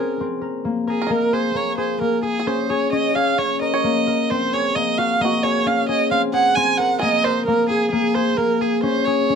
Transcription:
Already playing: A#3 C4 F#4 G#4 A#4
0.20 C4
0.41 A#4
0.65 A#3
0.87 G#4 A#4
1.02 A#4
1.07 A#3 D#5
1.11 A#4
1.33 G#4 C5
1.55 A#3 C#5
1.78 G#4 C5
2.01 A#3 A#4
2.23 G#4
2.40 G#4
2.47 C#4 C5
2.69 G#4 C#5
2.92 C#4 D#5
3.15 G#4 F5
3.38 C#4 C#5
3.61 A#4 D#5
3.74 C#5
3.84 A#3
4.07 A#4
4.30 C4 C5
4.53 G#4 C#5
4.75 A#3 D#5
4.98 F#4 F5
5.21 A#3 D#5
5.25 F#4
5.43 G#4 C#5
5.66 C#4 F5
5.89 G#4 D#5
6.11 C4 F5
6.33 G#4 F#5
6.55 C4 G#5
6.77 A#4 F#5
6.99 A#3 G#4 D#5
7.24 A#4 C5
7.46 A#3 A#4
7.69 G#4
7.91 A#3 G#4
8.15 G#4 C5
8.37 A#3 A#4
8.61 G#4
8.83 C#4 C5
9.05 G#4 C#5
9.30 C#4

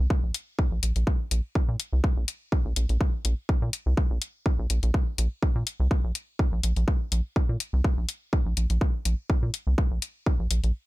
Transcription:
0.10 kick
0.23 A#1
0.34 open hi-hat
0.59 kick
0.72 A#1
0.83 A#1, open hi-hat
0.96 A#1, open hi-hat
1.07 kick
1.31 A#1, open hi-hat
1.55 kick
1.68 A#2
1.80 open hi-hat
1.93 C2
2.04 kick
2.17 A#1
2.28 open hi-hat
2.52 kick
2.65 A#1
2.76 A#1, open hi-hat
2.89 A#1, open hi-hat
3.01 kick
3.25 A#1, open hi-hat
3.49 kick
3.62 A#2
3.73 open hi-hat
3.86 C2
3.97 kick
4.10 A#1
4.22 open hi-hat
4.46 kick
4.59 A#1
4.70 A#1, open hi-hat
4.83 A#1, open hi-hat
4.94 kick
5.18 A#1, open hi-hat
5.43 kick
5.55 A#2
5.67 open hi-hat
5.80 C2
5.91 kick
6.04 A#1
6.15 open hi-hat
6.39 kick
6.52 A#1
6.63 A#1, open hi-hat
6.76 A#1, open hi-hat
6.88 kick
7.12 A#1, open hi-hat
7.36 kick
7.49 A#2
7.60 open hi-hat
7.73 C2
7.84 kick
7.97 A#1
8.09 open hi-hat
8.33 kick
8.46 A#1
8.57 A#1, open hi-hat
8.70 A#1, open hi-hat
8.81 kick
9.05 A#1, open hi-hat
9.30 kick
9.43 A#2
9.54 open hi-hat
9.67 C2
9.78 kick
9.91 A#1
10.02 open hi-hat
10.26 kick
10.39 A#1
10.51 A#1, open hi-hat
10.64 A#1, open hi-hat

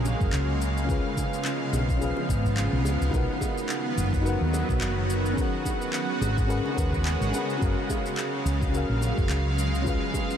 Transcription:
Already playing: A#1 C#3 F#3 G#3 A#3 C#4 F#4 G#4 A#4 F5
0.05 high bongo, shaker
0.21 F#1, kick, shaker
0.33 C#2, clap, shaker
0.61 F3 G#3 B3, shaker
0.77 shaker
0.85 C#4 F4
0.89 G#4 B4, kick, shaker
0.93 F5
1.17 kick, high bongo, shaker
1.34 shaker
1.45 clap, shaker
1.73 B1, high bongo, shaker
1.89 kick, shaker
1.97 C#4 F4 G#4
2.02 B4 F5, shaker
2.17 high bongo
2.29 G#1, kick, shaker
2.45 kick, shaker
2.57 clap, shaker
2.73 B1
2.85 C#2, high bongo, shaker
3.01 C#2, shaker
3.09 D#3 D#4 F#4 A#4, kick
3.13 B1 F#3 B4 F#5, shaker
3.41 kick, high bongo, shaker
3.58 shaker
3.69 clap, shaker
3.97 F#1, shaker
4.13 kick, shaker
4.21 D#4 F#4 A#4
4.26 B4 F#5, shaker
4.41 D#2
4.53 high bongo, shaker
4.69 B1, kick, shaker
4.81 F#1, clap, shaker
5.10 shaker
5.26 shaker
5.33 C#3 C#4 G#4, kick
5.38 G#3 A#4 B4 F#5, shaker
5.65 kick, high bongo, shaker
5.82 shaker
5.93 clap, shaker
6.21 G#1, high bongo, shaker
6.37 kick, shaker
6.47 C#4 G#4 A#4 B4 F#5, shaker
6.66 high bongo
6.75 D#2 C#4 G#4 A#4 B4 F#5, kick, shaker
6.93 kick, shaker
7.05 clap, shaker
7.21 G#1, shaker
7.31 C#4 G#4 A#4 B4, high bongo, shaker
7.36 F#5
7.50 shaker
7.57 C#4 F#4
7.61 F#1 F#3 G#3 G#4 A#4 F5, kick, shaker
7.90 kick, high bongo, shaker
8.06 shaker
8.17 clap, shaker
8.45 C#2, shaker
8.61 kick, shaker
8.69 C#4 F#4
8.74 G#4 A#4 F5, shaker
8.89 A#1
9.01 high bongo, shaker
9.18 F#1, kick, shaker
9.29 C#2, clap, shaker
9.58 F3 B3, shaker
9.75 shaker
9.82 C#4 F4, kick
9.86 G#4 B4 F5, shaker
10.14 kick, high bongo, shaker
10.30 shaker

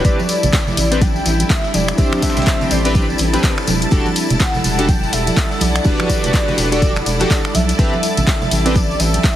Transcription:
Already playing: G3 D4 E4
0.04 A1 C4 D4 G4 B4 D5 A5 B5 A6, kick, closed hi-hat, tambourine
0.19 D5, tambourine, high conga
0.25 A4, closed hi-hat, open hi-hat, tambourine
0.43 A1 G5, closed hi-hat, tambourine, low conga
0.53 kick, snare, clap, closed hi-hat, tambourine
0.67 snare, tambourine, high conga, low conga
0.77 A1, closed hi-hat, open hi-hat, tambourine
0.91 C4 D4 G4 B4, snare, closed hi-hat, tambourine
1.01 G5, kick, closed hi-hat, tambourine, high conga
1.16 tambourine
1.26 A1, snare, closed hi-hat, open hi-hat, tambourine
1.40 closed hi-hat, tambourine, high conga
1.50 E5, kick, snare, clap, closed hi-hat, open hi-hat, tambourine
1.64 snare, tambourine
1.74 E1 D5, closed hi-hat, open hi-hat, tambourine, high conga
1.88 finger snap, closed hi-hat, tambourine
1.97 A1 C4 D4 G4 C5 E5, kick, closed hi-hat, tambourine
2.12 finger snap, tambourine, high conga
2.22 E5, kick, snare, closed hi-hat, open hi-hat, tambourine
2.30 snare, closed hi-hat
2.37 A1, snare, closed hi-hat, tambourine, low conga
2.42 snare, closed hi-hat
2.46 kick, snare, clap, closed hi-hat, tambourine
2.61 closed hi-hat, tambourine, high conga, low conga
2.71 A1 D5, open hi-hat, tambourine
2.85 C4 D4 G4 B4, closed hi-hat, tambourine
2.95 kick, closed hi-hat, tambourine, high conga
3.10 tambourine
3.18 A1, snare, closed hi-hat, open hi-hat, tambourine
3.33 C4 D4 G4 B4, snare, closed hi-hat, tambourine, high conga
3.43 kick, snare, clap, closed hi-hat, tambourine
3.58 finger snap, tambourine
3.67 E1, closed hi-hat, open hi-hat, tambourine, high conga
3.82 closed hi-hat, tambourine
3.91 E1 D4 F#4 G4 A4 F#5, kick, closed hi-hat, tambourine
4.05 tambourine, high conga
4.16 closed hi-hat, open hi-hat, tambourine
4.30 E1, closed hi-hat, tambourine, low conga
4.40 F#5, kick, snare, clap, closed hi-hat, tambourine
4.54 snare, tambourine, high conga, low conga
4.64 E1 F#5, closed hi-hat, open hi-hat, tambourine
4.78 D4 F#4 G4 A4, snare, closed hi-hat, tambourine
4.89 G5, kick, closed hi-hat, tambourine, high conga
5.03 tambourine
5.13 E1 E5, snare, closed hi-hat, open hi-hat, tambourine
5.27 closed hi-hat, tambourine, high conga
5.37 E5, kick, snare, clap, closed hi-hat, open hi-hat, tambourine
5.51 snare, tambourine
5.61 B1 D5, closed hi-hat, open hi-hat, tambourine, high conga
5.76 finger snap, closed hi-hat, tambourine
5.84 E1 D4 F#4 G4 B4, kick, closed hi-hat, tambourine
6.00 finger snap, tambourine, high conga
6.09 kick, closed hi-hat, open hi-hat, tambourine
6.24 E1, closed hi-hat, tambourine, low conga
6.34 kick, snare, clap, closed hi-hat, tambourine
6.48 closed hi-hat, tambourine, high conga, low conga
6.58 E1, open hi-hat, tambourine
6.72 D4 F#4 G4 A4, closed hi-hat, tambourine
6.82 kick, closed hi-hat, tambourine, high conga
6.96 finger snap, tambourine
7.06 E1, snare, closed hi-hat, open hi-hat, tambourine
7.20 D4 F#4 G4 A4, snare, closed hi-hat, tambourine, high conga
7.30 kick, snare, clap, closed hi-hat, tambourine
7.45 finger snap, tambourine
7.55 B1 E5, closed hi-hat, open hi-hat, tambourine, high conga
7.69 closed hi-hat, tambourine
7.78 A1 G3 C4 D4 G4 B4 E5 A5 B5 A6, kick, closed hi-hat, tambourine
7.93 tambourine, high conga
8.03 closed hi-hat, open hi-hat, tambourine
8.17 A1, closed hi-hat, tambourine, low conga
8.27 kick, snare, clap, closed hi-hat, tambourine
8.42 snare, tambourine, high conga, low conga
8.47 G5
8.51 A1, closed hi-hat, open hi-hat, tambourine
8.65 C4 D4 G4 B4, snare, closed hi-hat, tambourine
8.75 D5, kick, closed hi-hat, tambourine, high conga
8.91 tambourine
9.00 A1 E5, snare, closed hi-hat, open hi-hat, tambourine
9.14 closed hi-hat, tambourine, high conga
9.24 kick, snare, clap, closed hi-hat, open hi-hat, tambourine

